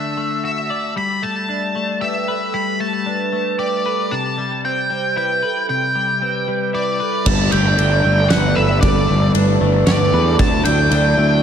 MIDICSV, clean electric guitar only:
0, 0, Header, 1, 2, 480
1, 0, Start_track
1, 0, Key_signature, 1, "major"
1, 0, Tempo, 523560
1, 885, Time_signature, 3, 2, 24, 8
1, 10477, End_track
2, 0, Start_track
2, 0, Title_t, "Clean electric guitar"
2, 0, Program_c, 0, 27
2, 0, Note_on_c, 0, 50, 40
2, 0, Note_on_c, 0, 57, 39
2, 0, Note_on_c, 0, 62, 37
2, 0, Note_on_c, 0, 66, 40
2, 0, Note_on_c, 0, 74, 41
2, 153, Note_off_c, 0, 57, 0
2, 157, Note_on_c, 0, 57, 40
2, 161, Note_off_c, 0, 66, 0
2, 400, Note_on_c, 0, 66, 38
2, 638, Note_off_c, 0, 74, 0
2, 639, Note_off_c, 0, 50, 0
2, 642, Note_on_c, 0, 74, 41
2, 877, Note_on_c, 0, 55, 42
2, 883, Note_off_c, 0, 66, 0
2, 905, Note_off_c, 0, 57, 0
2, 1122, Note_on_c, 0, 57, 39
2, 1359, Note_off_c, 0, 62, 0
2, 1363, Note_on_c, 0, 62, 37
2, 1596, Note_off_c, 0, 57, 0
2, 1607, Note_on_c, 0, 57, 41
2, 1844, Note_on_c, 0, 67, 40
2, 2087, Note_off_c, 0, 74, 0
2, 2091, Note_on_c, 0, 71, 42
2, 2322, Note_off_c, 0, 55, 0
2, 2326, Note_on_c, 0, 55, 40
2, 2556, Note_off_c, 0, 57, 0
2, 2567, Note_on_c, 0, 57, 39
2, 2569, Note_off_c, 0, 62, 0
2, 2807, Note_on_c, 0, 62, 42
2, 3037, Note_off_c, 0, 57, 0
2, 3048, Note_on_c, 0, 57, 44
2, 3075, Note_off_c, 0, 67, 0
2, 3294, Note_on_c, 0, 67, 40
2, 3532, Note_off_c, 0, 71, 0
2, 3536, Note_on_c, 0, 71, 44
2, 3771, Note_off_c, 0, 62, 0
2, 3771, Note_on_c, 0, 48, 44
2, 3772, Note_off_c, 0, 57, 0
2, 3799, Note_off_c, 0, 71, 0
2, 4013, Note_off_c, 0, 55, 0
2, 4013, Note_on_c, 0, 55, 42
2, 4259, Note_on_c, 0, 60, 39
2, 4490, Note_off_c, 0, 55, 0
2, 4493, Note_on_c, 0, 55, 43
2, 4727, Note_off_c, 0, 67, 0
2, 4731, Note_on_c, 0, 64, 42
2, 4974, Note_off_c, 0, 48, 0
2, 4974, Note_on_c, 0, 71, 46
2, 5215, Note_on_c, 0, 48, 44
2, 5446, Note_off_c, 0, 55, 0
2, 5457, Note_on_c, 0, 55, 41
2, 5458, Note_off_c, 0, 60, 0
2, 5701, Note_on_c, 0, 60, 38
2, 5928, Note_off_c, 0, 55, 0
2, 5934, Note_off_c, 0, 64, 0
2, 5939, Note_on_c, 0, 55, 47
2, 6172, Note_on_c, 0, 64, 43
2, 6175, Note_off_c, 0, 71, 0
2, 6415, Note_off_c, 0, 48, 0
2, 6417, Note_on_c, 0, 71, 45
2, 6650, Note_off_c, 0, 55, 0
2, 6653, Note_off_c, 0, 64, 0
2, 6656, Note_off_c, 0, 71, 0
2, 6658, Note_off_c, 0, 60, 0
2, 6661, Note_on_c, 0, 55, 61
2, 6897, Note_on_c, 0, 57, 54
2, 7141, Note_on_c, 0, 62, 55
2, 7369, Note_off_c, 0, 57, 0
2, 7373, Note_on_c, 0, 57, 60
2, 7614, Note_on_c, 0, 67, 58
2, 7849, Note_on_c, 0, 71, 60
2, 7855, Note_off_c, 0, 55, 0
2, 8089, Note_on_c, 0, 55, 60
2, 8323, Note_off_c, 0, 57, 0
2, 8327, Note_on_c, 0, 57, 58
2, 8566, Note_off_c, 0, 62, 0
2, 8570, Note_on_c, 0, 62, 57
2, 8808, Note_off_c, 0, 57, 0
2, 8809, Note_off_c, 0, 67, 0
2, 8812, Note_on_c, 0, 57, 63
2, 9047, Note_off_c, 0, 71, 0
2, 9051, Note_on_c, 0, 67, 61
2, 9286, Note_off_c, 0, 55, 0
2, 9293, Note_on_c, 0, 71, 65
2, 9523, Note_on_c, 0, 50, 62
2, 9528, Note_off_c, 0, 67, 0
2, 9529, Note_off_c, 0, 71, 0
2, 9766, Note_off_c, 0, 57, 0
2, 9770, Note_on_c, 0, 57, 62
2, 10010, Note_off_c, 0, 62, 0
2, 10013, Note_on_c, 0, 62, 57
2, 10249, Note_off_c, 0, 57, 0
2, 10253, Note_on_c, 0, 57, 62
2, 10477, Note_off_c, 0, 50, 0
2, 10477, Note_off_c, 0, 57, 0
2, 10477, Note_off_c, 0, 62, 0
2, 10477, End_track
0, 0, End_of_file